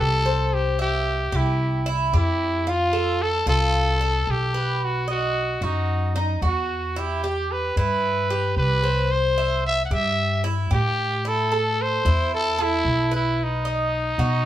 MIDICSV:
0, 0, Header, 1, 4, 480
1, 0, Start_track
1, 0, Tempo, 535714
1, 472, Time_signature, 4, 2, 24, 8
1, 12950, End_track
2, 0, Start_track
2, 0, Title_t, "Cuban tres"
2, 0, Program_c, 0, 25
2, 0, Note_on_c, 0, 67, 68
2, 215, Note_off_c, 0, 67, 0
2, 230, Note_on_c, 0, 72, 68
2, 697, Note_off_c, 0, 72, 0
2, 707, Note_on_c, 0, 76, 64
2, 1176, Note_off_c, 0, 76, 0
2, 1185, Note_on_c, 0, 67, 67
2, 1655, Note_off_c, 0, 67, 0
2, 1667, Note_on_c, 0, 64, 77
2, 1903, Note_off_c, 0, 64, 0
2, 1912, Note_on_c, 0, 67, 64
2, 2379, Note_off_c, 0, 67, 0
2, 2391, Note_on_c, 0, 65, 70
2, 2624, Note_on_c, 0, 69, 61
2, 2626, Note_off_c, 0, 65, 0
2, 3095, Note_off_c, 0, 69, 0
2, 3107, Note_on_c, 0, 65, 78
2, 3577, Note_off_c, 0, 65, 0
2, 3591, Note_on_c, 0, 69, 70
2, 4059, Note_off_c, 0, 69, 0
2, 4070, Note_on_c, 0, 71, 63
2, 4539, Note_off_c, 0, 71, 0
2, 4549, Note_on_c, 0, 75, 65
2, 5018, Note_off_c, 0, 75, 0
2, 5034, Note_on_c, 0, 66, 63
2, 5501, Note_off_c, 0, 66, 0
2, 5516, Note_on_c, 0, 63, 76
2, 5749, Note_off_c, 0, 63, 0
2, 5755, Note_on_c, 0, 66, 63
2, 6222, Note_off_c, 0, 66, 0
2, 6239, Note_on_c, 0, 64, 69
2, 6471, Note_off_c, 0, 64, 0
2, 6484, Note_on_c, 0, 67, 67
2, 6947, Note_off_c, 0, 67, 0
2, 6963, Note_on_c, 0, 64, 74
2, 7426, Note_off_c, 0, 64, 0
2, 7440, Note_on_c, 0, 67, 70
2, 7905, Note_off_c, 0, 67, 0
2, 7916, Note_on_c, 0, 72, 62
2, 8383, Note_off_c, 0, 72, 0
2, 8401, Note_on_c, 0, 76, 66
2, 8865, Note_off_c, 0, 76, 0
2, 8880, Note_on_c, 0, 67, 61
2, 9344, Note_off_c, 0, 67, 0
2, 9353, Note_on_c, 0, 64, 80
2, 9588, Note_off_c, 0, 64, 0
2, 9593, Note_on_c, 0, 67, 63
2, 10061, Note_off_c, 0, 67, 0
2, 10080, Note_on_c, 0, 64, 68
2, 10312, Note_off_c, 0, 64, 0
2, 10319, Note_on_c, 0, 69, 68
2, 10784, Note_off_c, 0, 69, 0
2, 10802, Note_on_c, 0, 64, 77
2, 11265, Note_off_c, 0, 64, 0
2, 11275, Note_on_c, 0, 69, 71
2, 11742, Note_off_c, 0, 69, 0
2, 11751, Note_on_c, 0, 71, 69
2, 12219, Note_off_c, 0, 71, 0
2, 12230, Note_on_c, 0, 75, 65
2, 12699, Note_off_c, 0, 75, 0
2, 12714, Note_on_c, 0, 66, 66
2, 12950, Note_off_c, 0, 66, 0
2, 12950, End_track
3, 0, Start_track
3, 0, Title_t, "Trumpet"
3, 0, Program_c, 1, 56
3, 0, Note_on_c, 1, 69, 95
3, 483, Note_on_c, 1, 67, 80
3, 497, Note_off_c, 1, 69, 0
3, 718, Note_off_c, 1, 67, 0
3, 734, Note_on_c, 1, 67, 87
3, 1221, Note_on_c, 1, 64, 74
3, 1234, Note_off_c, 1, 67, 0
3, 1685, Note_off_c, 1, 64, 0
3, 1936, Note_on_c, 1, 64, 85
3, 2415, Note_on_c, 1, 65, 92
3, 2428, Note_off_c, 1, 64, 0
3, 2888, Note_on_c, 1, 69, 100
3, 2902, Note_off_c, 1, 65, 0
3, 3122, Note_off_c, 1, 69, 0
3, 3130, Note_on_c, 1, 69, 97
3, 3859, Note_on_c, 1, 67, 87
3, 3873, Note_off_c, 1, 69, 0
3, 4342, Note_on_c, 1, 66, 80
3, 4356, Note_off_c, 1, 67, 0
3, 4569, Note_off_c, 1, 66, 0
3, 4575, Note_on_c, 1, 66, 88
3, 5056, Note_on_c, 1, 63, 72
3, 5069, Note_off_c, 1, 66, 0
3, 5524, Note_off_c, 1, 63, 0
3, 5796, Note_on_c, 1, 66, 75
3, 6262, Note_on_c, 1, 67, 76
3, 6276, Note_off_c, 1, 66, 0
3, 6737, Note_on_c, 1, 71, 86
3, 6751, Note_off_c, 1, 67, 0
3, 6967, Note_off_c, 1, 71, 0
3, 6972, Note_on_c, 1, 71, 82
3, 7649, Note_off_c, 1, 71, 0
3, 7686, Note_on_c, 1, 71, 90
3, 8169, Note_on_c, 1, 72, 82
3, 8182, Note_off_c, 1, 71, 0
3, 8643, Note_off_c, 1, 72, 0
3, 8658, Note_on_c, 1, 76, 96
3, 8813, Note_off_c, 1, 76, 0
3, 8829, Note_on_c, 1, 78, 59
3, 8898, Note_on_c, 1, 76, 92
3, 8911, Note_off_c, 1, 78, 0
3, 9366, Note_off_c, 1, 76, 0
3, 9622, Note_on_c, 1, 67, 94
3, 10107, Note_on_c, 1, 69, 90
3, 10120, Note_off_c, 1, 67, 0
3, 10588, Note_on_c, 1, 72, 95
3, 10602, Note_off_c, 1, 69, 0
3, 11053, Note_off_c, 1, 72, 0
3, 11061, Note_on_c, 1, 69, 95
3, 11310, Note_on_c, 1, 64, 93
3, 11323, Note_off_c, 1, 69, 0
3, 11773, Note_off_c, 1, 64, 0
3, 11784, Note_on_c, 1, 64, 81
3, 12038, Note_on_c, 1, 63, 75
3, 12051, Note_off_c, 1, 64, 0
3, 12950, Note_off_c, 1, 63, 0
3, 12950, End_track
4, 0, Start_track
4, 0, Title_t, "Upright bass"
4, 0, Program_c, 2, 32
4, 0, Note_on_c, 2, 36, 80
4, 1128, Note_off_c, 2, 36, 0
4, 1184, Note_on_c, 2, 36, 80
4, 1874, Note_off_c, 2, 36, 0
4, 1907, Note_on_c, 2, 41, 82
4, 3052, Note_off_c, 2, 41, 0
4, 3103, Note_on_c, 2, 36, 85
4, 3794, Note_off_c, 2, 36, 0
4, 3826, Note_on_c, 2, 35, 77
4, 4972, Note_off_c, 2, 35, 0
4, 5028, Note_on_c, 2, 42, 79
4, 5717, Note_off_c, 2, 42, 0
4, 5749, Note_on_c, 2, 40, 83
4, 6894, Note_off_c, 2, 40, 0
4, 6956, Note_on_c, 2, 43, 83
4, 7641, Note_off_c, 2, 43, 0
4, 7673, Note_on_c, 2, 36, 81
4, 8816, Note_off_c, 2, 36, 0
4, 8875, Note_on_c, 2, 43, 87
4, 9560, Note_off_c, 2, 43, 0
4, 9597, Note_on_c, 2, 45, 77
4, 10737, Note_off_c, 2, 45, 0
4, 10797, Note_on_c, 2, 40, 86
4, 11481, Note_off_c, 2, 40, 0
4, 11511, Note_on_c, 2, 35, 83
4, 12654, Note_off_c, 2, 35, 0
4, 12707, Note_on_c, 2, 47, 88
4, 12950, Note_off_c, 2, 47, 0
4, 12950, End_track
0, 0, End_of_file